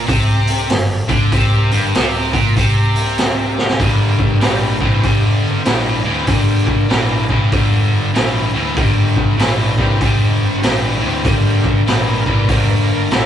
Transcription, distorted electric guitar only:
0.07 0.69 C3 loud
0.70 1.02 G2 medium
1.08 1.31 D3 loud
1.33 1.70 C3 loud
1.72 1.94 G2 loud
1.94 2.32 C3 loud
2.33 2.55 A#2 medium
2.56 3.80 C3 loud
3.80 4.38 G2 medium
3.80 4.38 D3 medium
4.41 4.77 G2 medium
4.41 4.77 E3 medium
4.80 5.02 G2 medium
4.80 5.02 E3 medium
5.03 5.62 G2 medium
5.03 5.62 D3 medium
5.65 6.01 G2 medium
5.65 6.01 E3 medium
6.05 6.25 G2 medium
6.05 6.26 E3 medium
6.27 6.85 G2 medium
6.27 6.85 D3 medium
6.88 7.25 G2 medium
6.88 7.25 E3 medium
7.30 7.50 G2 medium
7.30 7.50 E3 medium
7.52 8.10 G2 medium
7.52 8.10 D3 loud
8.14 8.50 G2 medium
8.14 8.50 E3 medium
8.53 8.74 G2 medium
8.53 8.75 E3 medium
8.76 9.34 G2 medium
8.76 9.35 D3 medium
9.38 9.74 G2 medium
9.38 9.74 E3 medium
9.77 9.98 G2 medium
9.77 9.99 E3 medium
10.01 10.58 G2 medium
10.01 10.59 D3 medium
10.63 10.98 G2 medium
10.63 10.99 E3 medium
11.01 11.22 G2 medium
11.01 11.22 E3 medium
11.24 11.82 G2 medium
11.24 11.82 D3 medium
11.86 12.22 G2 medium
11.86 12.23 E3 medium
12.26 12.47 G2 medium
12.26 12.47 E3 medium
12.49 13.07 G2 medium
12.49 13.07 D3 medium
13.10 13.26 G2 medium
13.10 13.26 E3 medium

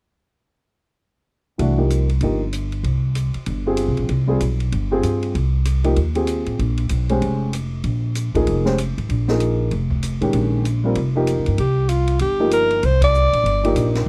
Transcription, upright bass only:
1.59 2.19 C2 medium
2.21 2.81 G1 medium
2.83 3.31 C2 medium
3.35 muted upright bass stroke soft
3.47 3.86 G1 medium
3.88 3.98 C2 medium
3.99 4.09 A#1 medium
4.09 4.38 C2 medium
4.41 4.70 B1 medium
4.72 5.01 G1 medium
5.04 5.33 G2 medium
5.35 5.94 C2 medium
5.97 6.44 D#2 medium
6.47 6.59 A1 soft
6.59 6.88 A#1 medium
6.91 7.20 B1 medium
7.22 7.81 F1 medium
7.84 8.31 A#1 medium
8.35 8.46 A1 medium
8.48 8.94 F1 medium
8.98 9.09 G#1 medium
9.09 9.68 A#1 medium
9.71 10.18 F1 medium
10.22 10.33 A1 medium
10.34 10.93 A#1 medium
10.96 11.35 F1 medium
11.38 11.47 C#2 soft
11.48 11.58 G2 medium
11.58 12.17 C2 medium
12.21 12.80 G1 medium
12.83 13.30 C2 medium
13.33 13.43 A#1 medium
13.44 13.73 G1 medium
13.75 14.05 A#1 medium

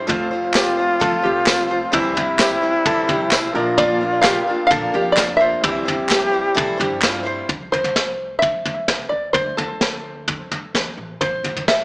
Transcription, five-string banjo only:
3.78 4.21 D5 loud
4.22 4.66 F5 loud
4.67 5.12 F5 loud
5.12 5.36 D5 medium
5.37 6.73 E5 loud
7.72 8.38 C5 medium
8.39 9.09 E5 medium
9.09 9.33 D5 medium
9.33 9.56 C5 medium
9.57 10.93 A4 medium
11.21 11.64 C5 medium
11.68 11.84 E5 medium

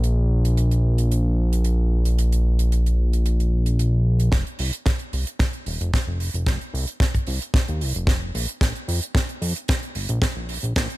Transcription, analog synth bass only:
0.00 4.30 A#1 medium
4.33 4.45 F1 medium
4.59 4.71 C2 medium
5.13 5.25 C2 medium
5.67 5.79 D#1 medium
5.81 5.91 F1 medium
6.07 6.30 F1 medium
6.34 6.45 F1 medium
6.47 6.59 F1 medium
6.74 6.86 C2 loud
7.27 7.39 C2 medium
7.69 7.83 D#2 medium
7.81 7.93 C2 medium
7.95 8.31 F1 medium
8.35 8.46 A#1 medium
8.61 8.73 A#1 loud
8.88 9.00 F2 medium
9.42 9.54 F2 medium
9.95 10.07 G1 medium
10.09 10.20 A#1 loud
10.36 10.58 A#1 medium
10.63 10.74 A#1 medium
10.76 10.88 A#1 loud

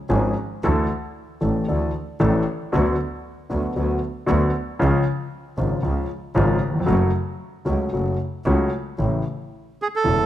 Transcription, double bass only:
0.10 0.33 G#1 medium
0.64 0.86 D2 medium
1.42 1.64 A1 medium
1.69 1.91 D2 medium
2.21 2.43 A1 medium
2.74 2.95 D2 medium
3.51 3.73 D2 medium
3.76 3.98 D2 medium
4.29 4.50 D2 medium
4.82 5.03 C#2 medium
5.58 5.80 G#1 medium
5.84 6.06 C#2 medium
6.36 6.58 G#1 medium
6.89 7.11 F#1 medium
7.67 7.89 C#2 medium
7.93 8.16 F#1 medium
8.45 8.68 C#2 medium
8.99 9.22 A1 medium
10.06 10.26 E1 medium

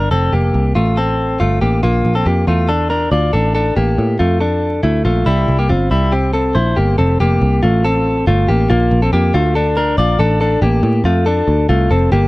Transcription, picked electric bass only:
0.11 0.29 F1 medium
0.33 0.51 F1 medium
0.54 0.72 C2 medium
0.76 1.37 A1 medium
1.41 1.59 G1 medium
1.62 1.80 A1 medium
1.83 2.01 A#1 medium
2.05 2.23 A#1 medium
2.26 2.44 F2 medium
2.47 3.09 E2 medium
3.12 3.30 D2 medium
3.34 3.70 A1 medium
3.77 3.95 A1 medium
3.98 4.16 A2 medium
4.20 4.81 F2 medium
4.83 5.02 D2 medium
5.05 5.23 A#1 medium
5.26 5.45 C2 medium
5.48 5.72 C2 medium
5.70 5.88 G1 medium
5.91 6.52 C2 medium
6.55 6.74 A#1 medium
6.77 6.95 G1 medium
6.99 7.17 F1 loud
7.20 7.38 F1 medium
7.41 7.60 C2 loud
7.63 8.24 A1 medium
8.27 8.45 G1 medium
8.49 8.67 A1 medium
8.70 8.88 A#1 loud
8.91 9.09 A#1 loud
9.13 9.31 F2 loud
9.34 9.95 D2 medium
9.98 10.16 A#1 medium
10.19 10.55 A1 medium
10.62 10.80 A1 loud
10.83 11.01 A2 loud
11.04 11.41 F2 medium
11.48 11.66 D2 medium
11.69 11.87 C2 medium
11.91 12.09 F1 loud
12.12 12.28 G1 loud

